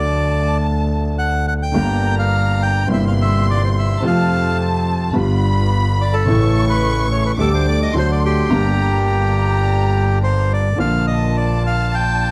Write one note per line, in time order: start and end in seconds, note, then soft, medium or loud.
0.00 1.63 D2 medium
0.00 1.64 D2 medium
0.00 1.63 D3 medium
0.00 1.63 F#3 medium
0.00 1.64 A3 medium
0.00 1.64 F#4 medium
0.00 0.57 D5 medium
0.00 1.42 A5 medium
1.19 1.46 F#5 medium
1.48 1.54 F#5 medium
1.63 2.15 G5 medium
1.72 2.83 G1 medium
1.72 2.84 G1 medium
1.72 2.83 G2 medium
1.72 2.82 D3 medium
1.72 2.83 G3 medium
1.72 2.83 A#3 medium
1.72 2.84 A#3 medium
1.72 2.84 D4 medium
1.72 2.84 G4 medium
1.76 2.84 G4 medium
1.76 2.86 A#5 medium
2.19 2.63 F5 medium
2.62 2.88 G5 medium
2.87 3.97 G1 medium
2.87 3.97 G2 medium
2.87 3.96 C3 medium
2.87 3.96 G3 soft
2.87 3.97 A#3 medium
2.87 3.97 C4 medium
2.87 3.97 E4 medium
2.87 3.98 E4 medium
2.87 4.03 C6 medium
2.93 3.05 E5 medium
3.08 3.13 F5 medium
3.22 3.46 E5 medium
3.50 3.63 D5 medium
3.64 3.70 C5 medium
3.79 4.03 E5 medium
4.00 5.09 F2 medium
4.00 5.08 C3 medium
4.00 5.09 F3 medium
4.00 5.09 A3 medium
4.00 5.10 C4 medium
4.00 5.10 F4 medium
4.00 5.15 A5 medium
4.05 5.10 F4 medium
4.05 4.57 F5 medium
5.13 6.21 G1 medium
5.13 6.22 G1 medium
5.13 6.21 G2 medium
5.13 6.20 D3 medium
5.13 6.21 G3 soft
5.13 6.22 G3 medium
5.13 6.21 B3 soft
5.13 6.22 B3 medium
5.13 6.22 F4 medium
5.13 6.26 B5 loud
6.01 6.15 D5 medium
6.13 6.65 A4 medium
6.25 7.33 A1 medium
6.25 7.34 A1 medium
6.25 7.33 A2 medium
6.25 7.32 C#3 medium
6.25 7.33 E3 medium
6.25 7.33 A3 medium
6.25 7.33 C#4 medium
6.25 7.33 E4 medium
6.25 7.34 E4 medium
6.25 7.34 C#6 loud
6.69 7.08 B4 medium
7.12 7.24 C#5 medium
7.26 7.32 B4 medium
7.37 7.92 D2 medium
7.37 7.92 D3 medium
7.37 7.92 G3 soft
7.37 7.92 A3 medium
7.37 7.92 D4 medium
7.37 7.92 G4 medium
7.37 7.52 A4 medium
7.37 7.94 D6 loud
7.41 7.93 G4 medium
7.55 7.67 C5 medium
7.68 7.80 D5 loud
7.82 7.94 D#5 medium
7.93 8.48 D2 medium
7.93 8.48 D3 medium
7.93 8.48 F#3 medium
7.93 8.48 A3 medium
7.93 8.48 D4 medium
7.93 8.49 F#4 medium
7.93 8.50 C6 medium
7.99 8.11 C5 medium
8.12 8.23 D5 medium
8.25 10.19 G4 medium
8.49 10.68 G1 medium
8.49 10.68 G2 medium
8.49 10.67 D3 medium
8.49 10.67 G3 medium
8.49 10.68 A#3 medium
8.49 10.68 D4 medium
8.49 10.68 G4 medium
8.49 10.69 G4 medium
8.49 9.04 A#5 medium
9.05 10.46 A#5 medium
10.24 10.52 C5 medium
10.53 10.79 D5 medium
10.76 12.31 A#1 medium
10.76 12.31 A#2 medium
10.76 12.31 D3 medium
10.76 12.31 F3 soft
10.76 12.31 A#3 soft
10.76 12.31 A#3 medium
10.76 12.31 D4 medium
10.76 12.31 F4 medium
10.76 11.06 F5 medium
10.76 12.31 A5 medium
10.80 12.31 F4 medium
11.07 11.37 D#5 medium
11.37 11.63 D5 medium
11.67 11.95 F5 medium
11.95 12.31 G5 medium